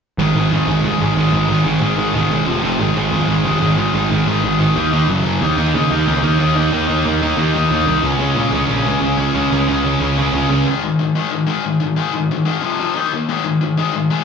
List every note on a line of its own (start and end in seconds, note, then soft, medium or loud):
0.18 0.32 G#1 medium
0.18 0.36 G#2 medium
0.18 0.35 D#3 medium
0.18 0.35 G#3 medium
0.34 0.48 G#1 medium
0.34 0.51 G#2 medium
0.34 0.52 D#3 medium
0.34 0.52 G#3 medium
0.50 0.64 F2 medium
0.50 0.68 G#2 medium
0.50 0.67 D#3 loud
0.50 0.67 G#3 medium
0.66 0.80 G#1 medium
0.66 0.83 G#2 medium
0.66 0.83 D#3 medium
0.66 0.84 G#3 medium
0.82 0.96 F1 medium
0.82 1.01 G#2 medium
0.82 1.01 D#3 medium
0.82 1.00 G#3 loud
0.99 1.13 G#1 medium
0.99 1.15 G#2 medium
0.99 1.16 D#3 medium
0.99 1.17 G#3 loud
1.15 1.29 G#1 medium
1.15 1.34 G#2 medium
1.15 1.33 D#3 medium
1.15 1.32 G#3 loud
1.32 1.46 G#1 medium
1.32 1.47 G#2 medium
1.32 1.48 D#3 medium
1.32 1.48 G#3 medium
1.48 1.62 G#1 medium
1.48 1.66 G#2 medium
1.48 1.65 D#3 medium
1.48 1.64 G#3 loud
1.65 1.79 G#1 medium
1.65 1.80 G#2 medium
1.65 1.80 D#3 medium
1.65 1.80 G#3 medium
1.81 2.08 G#1 medium
1.81 1.96 G#2 medium
1.81 1.96 D#3 medium
1.81 1.95 G#3 medium
1.96 2.12 G#2 medium
1.96 2.13 D#3 medium
1.96 2.13 G#3 medium
2.13 2.41 E1 medium
2.13 2.30 G#2 medium
2.13 2.29 D#3 medium
2.13 2.29 G#3 medium
2.30 2.45 G#2 medium
2.30 2.45 D#3 medium
2.30 2.46 G#3 loud
2.46 2.61 F1 medium
2.46 2.63 F2 medium
2.46 2.63 C3 loud
2.46 2.62 F3 loud
2.63 2.77 F1 medium
2.63 2.78 F2 medium
2.63 2.79 C3 medium
2.63 2.79 F3 medium
2.79 2.93 G#1 medium
2.79 2.95 G#2 medium
2.79 2.94 D#3 loud
2.79 2.94 G#3 loud
2.95 3.09 G#1 medium
2.95 3.10 G#2 medium
2.95 3.10 D#3 medium
2.95 3.11 G#3 medium
3.11 3.25 F2 medium
3.11 3.28 G#2 medium
3.11 3.27 D#3 medium
3.11 3.27 G#3 loud
3.28 3.42 G#1 medium
3.28 3.43 G#2 medium
3.28 3.44 D#3 medium
3.28 3.44 G#3 medium
3.44 3.58 F1 medium
3.44 3.61 G#2 medium
3.44 3.60 D#3 medium
3.44 3.60 G#3 loud
3.61 3.75 G#1 medium
3.61 3.76 G#2 medium
3.61 3.76 D#3 medium
3.61 3.77 G#3 loud
3.77 3.91 G#1 medium
3.77 3.93 G#2 loud
3.77 3.93 D#3 medium
3.77 3.92 G#3 loud
3.93 4.07 G#1 medium
3.93 4.09 G#2 medium
3.93 4.09 D#3 medium
3.93 4.10 G#3 medium
4.10 4.24 G#1 medium
4.10 4.26 G#2 medium
4.10 4.26 D#3 medium
4.10 4.25 G#3 medium
4.26 4.40 G#1 medium
4.26 4.42 G#2 medium
4.26 4.42 D#3 medium
4.26 4.43 G#3 medium
4.43 4.70 G#1 medium
4.43 4.60 G#2 medium
4.43 4.60 D#3 medium
4.43 4.59 G#3 medium
4.60 4.76 G#2 medium
4.60 4.74 D#3 medium
4.60 4.75 G#3 medium
4.75 5.02 D#2 medium
4.75 4.92 D#3 medium
4.75 4.91 A#3 loud
4.75 4.91 D#4 loud
4.92 5.08 D#3 medium
4.92 5.08 A#3 medium
4.92 5.08 D#4 medium
5.08 5.22 F#1 medium
5.08 5.25 F#2 medium
5.08 5.24 C#3 medium
5.08 5.24 F#3 loud
5.24 5.38 F#1 medium
5.24 5.41 F#2 medium
5.24 5.41 C#3 medium
5.24 5.41 F#3 medium
5.41 5.55 D#2 medium
5.41 5.58 D#3 medium
5.41 5.57 A#3 medium
5.41 5.57 D#4 loud
5.57 5.71 D#2 medium
5.57 5.74 D#3 medium
5.57 5.74 A#3 medium
5.57 5.74 D#4 medium
5.74 5.88 C#3 medium
5.74 5.91 D#3 medium
5.74 5.90 A#3 medium
5.74 5.90 D#4 loud
5.90 6.04 D#2 medium
5.90 6.06 D#3 medium
5.90 6.06 A#3 medium
5.90 6.07 D#4 loud
6.07 6.20 C#2 medium
6.07 6.23 D#3 medium
6.07 6.23 A#3 medium
6.07 6.22 D#4 medium
6.23 6.37 D#2 medium
6.23 6.38 D#3 medium
6.23 6.39 A#3 medium
6.23 6.39 D#4 loud
6.39 6.53 D#2 medium
6.39 6.56 D#3 medium
6.39 6.55 A#3 loud
6.39 6.55 D#4 loud
6.56 6.69 D#2 medium
6.56 6.71 D#3 medium
6.56 6.72 A#3 medium
6.56 6.72 D#4 medium
6.72 6.86 D#2 medium
6.72 6.87 D#3 medium
6.72 6.87 A#3 medium
6.72 6.86 D#4 medium
6.87 7.02 D#2 medium
6.87 7.04 D#3 medium
6.87 7.05 A#3 medium
6.87 7.05 D#4 medium
7.05 7.32 D#2 medium
7.05 7.22 D#3 medium
7.05 7.22 A#3 loud
7.05 7.21 D#4 medium
7.22 7.37 D#3 medium
7.22 7.37 A#3 medium
7.22 7.38 D#4 medium
7.37 7.64 D#2 medium
7.37 7.54 D#3 medium
7.37 7.54 A#3 medium
7.37 7.53 D#4 loud
7.54 7.69 D#3 medium
7.54 7.70 A#3 medium
7.54 7.71 D#4 medium
7.70 7.84 D#2 medium
7.70 7.88 D#3 medium
7.70 7.86 A#3 loud
7.70 7.86 D#4 loud
7.86 8.00 C2 medium
7.86 8.03 D#3 medium
7.86 8.03 A#3 medium
7.86 8.03 D#4 medium
8.03 8.16 C#2 medium
8.03 8.20 C#3 medium
8.03 8.20 G#3 medium
8.03 8.19 C#4 loud
8.19 8.33 C#2 medium
8.19 8.35 C#3 medium
8.19 8.36 G#3 medium
8.19 8.36 C#4 medium
8.35 8.49 A#2 medium
8.35 8.52 C#3 medium
8.35 8.52 G#3 medium
8.35 8.51 C#4 medium
8.51 8.65 C#2 medium
8.51 8.67 C#3 medium
8.51 8.68 G#3 medium
8.51 8.68 C#4 medium
8.68 8.82 A#1 medium
8.68 8.85 C#3 medium
8.68 8.85 G#3 medium
8.68 8.83 C#4 medium
8.85 8.99 C#2 medium
8.85 9.00 C#3 medium
8.85 9.02 G#3 loud
8.85 9.01 C#4 loud
9.01 9.15 C#2 medium
9.01 9.17 C#3 medium
9.01 9.18 G#3 medium
9.01 9.16 C#4 medium
9.17 9.31 C#2 medium
9.17 9.33 C#3 medium
9.17 9.33 G#3 medium
9.17 9.34 C#4 medium
9.34 9.48 C#2 medium
9.34 9.51 C#3 medium
9.34 9.50 G#3 medium
9.34 9.50 C#4 loud
9.51 9.65 C#2 medium
9.51 9.67 C#3 medium
9.51 9.67 G#3 medium
9.51 9.67 C#4 medium
9.67 9.94 C#2 medium
9.67 9.83 C#3 medium
9.67 9.83 G#3 loud
9.67 9.82 C#4 loud
9.84 9.99 C#3 medium
9.84 9.99 G#3 medium
9.84 10.00 C#4 medium
10.00 10.27 C#2 medium
10.00 10.17 C#3 medium
10.00 10.17 G#3 medium
10.00 10.16 C#4 medium
10.17 10.32 C#3 medium
10.17 10.33 G#3 medium
10.17 10.33 C#4 loud
10.33 10.46 C#2 medium
10.33 10.50 C#3 medium
10.33 10.49 G#3 medium
10.33 10.49 C#4 medium
10.50 10.63 C#2 medium
10.50 10.66 C#3 medium
10.50 10.66 G#3 medium
10.50 10.65 C#4 medium
10.66 10.81 G#2 medium
10.66 10.82 D#3 medium
10.66 10.82 G#3 medium
10.83 10.98 G#2 medium
10.83 10.98 D#3 medium
10.99 11.14 G#2 medium
10.99 11.14 D#3 medium
11.15 11.31 G#2 medium
11.15 11.31 D#3 loud
11.15 11.31 G#3 loud
11.32 11.45 G#2 medium
11.32 11.46 D#3 medium
11.47 11.63 G#2 medium
11.47 11.63 D#3 loud
11.47 11.64 G#3 medium
11.64 11.79 G#2 medium
11.64 11.79 D#3 medium
11.80 11.95 G#2 medium
11.80 11.96 D#3 medium
11.96 12.12 G#2 medium
11.96 12.12 D#3 medium
11.96 12.13 G#3 loud
12.13 12.28 G#2 medium
12.13 12.28 D#3 medium
12.31 12.44 G#2 medium
12.31 12.45 D#3 medium
12.45 12.61 G#2 medium
12.45 12.62 D#3 medium
12.45 12.62 G#3 medium
12.62 12.78 F2 medium
12.62 12.78 C3 medium
12.62 12.79 F3 medium
12.79 12.95 F2 medium
12.79 12.95 C3 medium
12.79 12.95 F3 loud
12.96 13.11 D#3 medium
12.96 13.11 A#3 loud
12.96 13.12 D#4 loud
13.13 13.28 D#3 medium
13.13 13.28 A#3 medium
13.29 13.44 G#2 medium
13.29 13.44 D#3 medium
13.29 13.45 G#3 medium
13.45 13.60 G#2 medium
13.45 13.60 D#3 medium
13.61 13.76 G#2 medium
13.61 13.76 D#3 medium
13.77 13.92 G#2 medium
13.77 13.93 D#3 medium
13.77 13.94 G#3 loud
13.94 14.09 G#2 medium
13.94 14.09 D#3 medium
14.10 14.24 G#2 medium
14.10 14.24 D#3 medium
14.10 14.24 G#3 loud